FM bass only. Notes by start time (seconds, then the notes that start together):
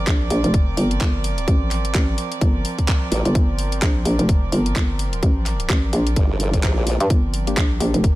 0.07 A#1
0.31 A#1
0.44 F1
0.77 G1
1.01 G1
1.48 A1
1.95 A1
2.41 G1
3.25 G1
3.35 G1
3.82 A#1
4.05 A#1
4.19 F1
4.52 G1
4.76 G1
5.23 A1
5.70 A1
5.93 A#1
7.00 G2
7.10 G1
7.57 A#1
7.80 A#1
7.94 F1